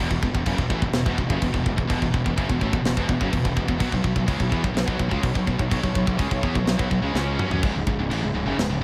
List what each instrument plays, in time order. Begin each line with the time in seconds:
Already playing: string section E3 B3 F#4
0.10 fingered electric bass E1, distorted electric guitar E2 B2, kick
0.23 fingered electric bass E1, distorted electric guitar E2 B2, kick
0.34 fingered electric bass E1, distorted electric guitar E2 B2, kick
0.46 fingered electric bass F#1, distorted electric guitar F#2 C#3, kick, crash
0.58 fingered electric bass E1, distorted electric guitar E2 B2, kick
0.70 fingered electric bass A1, distorted electric guitar A2 E3, kick
0.82 fingered electric bass E1, distorted electric guitar E2 B2, kick
0.93 fingered electric bass E1, distorted electric guitar E2 B2, snare, crash
1.06 fingered electric bass E1, distorted electric guitar E2 B2, kick
1.18 fingered electric bass E1, distorted electric guitar E2 B2, kick
1.30 fingered electric bass F#1, distorted electric guitar F#2 C#3, kick
1.42 fingered electric bass E1, distorted electric guitar E2 B2, kick, crash
1.54 fingered electric bass E1, distorted electric guitar E2 B2, kick
1.66 fingered electric bass E1, distorted electric guitar E2 B2, kick
1.77 fingered electric bass E1, distorted electric guitar E2 B2, kick
1.88 fingered electric bass E1, distorted electric guitar E2 B2, kick, crash
2.02 fingered electric bass E1, distorted electric guitar E2 B2, kick
2.14 fingered electric bass E1, distorted electric guitar E2 B2, kick
2.26 fingered electric bass E1, distorted electric guitar E2 B2, kick
2.37 fingered electric bass F#1, distorted electric guitar F#2 C#3, kick, crash
2.49 fingered electric bass E1, distorted electric guitar E2 B2, kick
2.61 fingered electric bass A1, distorted electric guitar A2 E3, kick
2.73 fingered electric bass E1, distorted electric guitar E2 B2, kick
2.84 fingered electric bass E1, distorted electric guitar E2 B2, snare, crash
2.97 fingered electric bass E1, distorted electric guitar E2 B2, kick
3.09 fingered electric bass E1, distorted electric guitar E2 B2, kick
3.20 fingered electric bass F#1, distorted electric guitar F#2 C#3, kick
3.33 fingered electric bass E1, distorted electric guitar E2 B2, kick, crash
3.45 fingered electric bass E1, distorted electric guitar E2 B2, kick
3.57 fingered electric bass E1, distorted electric guitar E2 B2, kick
3.68 fingered electric bass E1, distorted electric guitar E2 B2, kick
3.80 fingered electric bass B1, distorted electric guitar B2 F#3, string section C#5, kick, crash
3.92 fingered electric bass B1, distorted electric guitar B2 F#3, kick
4.04 fingered electric bass B1, distorted electric guitar B2 F#3, kick
4.16 fingered electric bass B1, distorted electric guitar B2 F#3, kick
4.28 fingered electric bass C#2, distorted electric guitar C#3 G#3, kick, crash
4.40 fingered electric bass B1, distorted electric guitar B2 F#3, kick
4.52 fingered electric bass E2, distorted electric guitar E3 B3, kick
4.63 fingered electric bass B1, distorted electric guitar B2 F#3, kick
4.74 fingered electric bass B1, distorted electric guitar B2 F#3, snare, crash
4.88 fingered electric bass B1, distorted electric guitar B2 F#3, kick
4.98 fingered electric bass B1, distorted electric guitar B2 F#3, kick
5.10 fingered electric bass C#2, distorted electric guitar C#3 G#3, kick
5.23 fingered electric bass B1, distorted electric guitar B2 F#3, kick, crash
5.35 fingered electric bass B1, distorted electric guitar B2 F#3, kick
5.47 fingered electric bass B1, distorted electric guitar B2 F#3, kick
5.59 fingered electric bass B1, distorted electric guitar B2 F#3, kick
5.71 fingered electric bass B1, distorted electric guitar B2 F#3, kick, crash
5.83 fingered electric bass B1, distorted electric guitar B2 F#3, kick
5.95 fingered electric bass B1, distorted electric guitar B2 F#3, kick
6.07 fingered electric bass B1, distorted electric guitar B2 F#3, kick
6.19 fingered electric bass C#2, distorted electric guitar C#3 G#3, kick, crash
6.30 fingered electric bass B1, distorted electric guitar B2 F#3, kick
6.43 fingered electric bass E2, distorted electric guitar E3 B3, kick
6.55 fingered electric bass B1, distorted electric guitar B2 F#3, kick
6.66 fingered electric bass B1, distorted electric guitar B2 F#3, snare, crash
6.77 fingered electric bass B1, distorted electric guitar B2 F#3, kick
6.90 fingered electric bass B1, distorted electric guitar B2 F#3, kick
7.02 fingered electric bass C#2, distorted electric guitar C#3 G#3
7.14 fingered electric bass C#2, distorted electric guitar C#3 G#3 C#4, snare
7.38 fingered electric bass F#2, distorted electric guitar F#3 C#4, mid tom
7.50 fingered electric bass F#2, distorted electric guitar F#3 C#4, floor tom
7.63 fingered electric bass C#1, distorted electric guitar C#2 G#2, string section C#3 G#3 D#4, kick, china
7.74 fingered electric bass C#1, distorted electric guitar C#2 G#2
7.87 fingered electric bass C#1, distorted electric guitar C#2 G#2, kick
7.97 fingered electric bass C#1, distorted electric guitar C#2 G#2
8.10 fingered electric bass A1, distorted electric guitar A2 E3, china
8.22 fingered electric bass C#1, distorted electric guitar C#2 G#2
8.34 fingered electric bass C#1, distorted electric guitar C#2 G#2
8.46 fingered electric bass F#1, distorted electric guitar F#2 C#3
8.57 fingered electric bass C#1, distorted electric guitar C#2 G#2, snare, china
8.70 fingered electric bass C#1, distorted electric guitar C#2 G#2